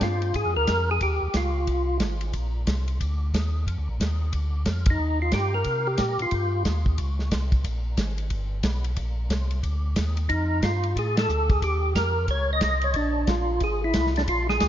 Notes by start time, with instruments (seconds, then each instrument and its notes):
0.01 tonewheel organ G2 F4, kick, snare, hi-hat pedal, ride
0.22 ride
0.34 tonewheel organ G#2 G#4, kick, ride
0.45 tonewheel organ F2
0.56 tonewheel organ D2 A#4
0.67 tonewheel organ F2, kick, snare, hi-hat pedal, ride
0.91 tonewheel organ G#4
1.01 tonewheel organ D#2 G4, kick, ride
1.22 tonewheel organ D#2
1.34 tonewheel organ C#2 F4, kick, snare, hi-hat pedal, ride
1.67 tonewheel organ C2, kick, ride
2.00 tonewheel organ G#1, kick, snare, hi-hat pedal, ride
2.21 ride
2.33 tonewheel organ A#1, kick, ride
2.67 tonewheel organ C2, kick, snare, hi-hat pedal, ride
2.88 ride
3.00 tonewheel organ D2, kick, ride
3.34 tonewheel organ D#2, kick, snare, hi-hat pedal, ride
3.66 tonewheel organ F2, kick, ride
3.78 tonewheel organ D2
3.88 tonewheel organ A#1
4.00 tonewheel organ D#2, kick, snare, hi-hat pedal, ride
4.33 tonewheel organ D2, kick, ride
4.66 tonewheel organ F2, kick, snare, hi-hat pedal, ride
4.86 kick, ride
4.90 tonewheel organ D#4
4.99 tonewheel organ D#2
5.22 tonewheel organ F4
5.32 tonewheel organ G2 G4, kick, snare, hi-hat pedal, ride
5.54 tonewheel organ A#4
5.64 tonewheel organ C3, kick, ride
5.87 tonewheel organ G4
5.98 tonewheel organ A#2, kick, snare, hi-hat pedal, ride
6.19 tonewheel organ A#2 F4, ride
6.31 tonewheel organ G2, kick, ride
6.65 tonewheel organ D#2, kick, snare, hi-hat pedal, ride
6.86 kick
6.98 tonewheel organ C#2, kick, ride
7.19 snare
7.31 tonewheel organ C2, kick, snare, hi-hat pedal, ride
7.52 kick, ride
7.64 tonewheel organ A#1, kick, ride
7.97 tonewheel organ G#1, kick, snare, hi-hat pedal, ride
8.18 ride
8.30 tonewheel organ G1, kick, ride
8.63 tonewheel organ B1, kick, snare, hi-hat pedal, ride
8.84 ride
8.96 tonewheel organ A#1, kick, ride
9.30 tonewheel organ C2, kick, snare, hi-hat pedal, ride
9.51 ride
9.63 tonewheel organ D2, kick, ride
9.96 tonewheel organ D#2, kick, snare, hi-hat pedal, ride
10.17 ride
10.29 tonewheel organ F2 D#4, kick, ride
10.62 tonewheel organ G2 F4, kick, snare, hi-hat pedal, ride
10.83 ride
10.96 tonewheel organ A2 G#4, kick, ride
11.17 tonewheel organ A4, snare, ride
11.29 tonewheel organ D2, hi-hat pedal
11.50 tonewheel organ G#4, kick, ride
11.62 tonewheel organ D#2 G4, kick, ride
11.95 tonewheel organ F2 A#4, kick, snare, hi-hat pedal, ride
12.28 tonewheel organ C#2 C#5, kick, ride
12.53 tonewheel organ D#5
12.61 tonewheel organ C2, kick, snare, hi-hat pedal, ride
12.81 tonewheel organ C#5, ride
12.94 tonewheel organ A#1 D4, kick, ride
13.27 tonewheel organ A#1 F4, kick, snare, hi-hat pedal, ride
13.60 tonewheel organ G#1 G#4, kick, ride
13.84 tonewheel organ E4
13.94 tonewheel organ C2, kick, snare, hi-hat pedal, ride
14.06 snare
14.16 tonewheel organ D4, snare, ride
14.28 tonewheel organ A#1 F4, kick, ride
14.49 tonewheel organ G#4, snare
14.60 tonewheel organ D2, kick, snare, hi-hat pedal, ride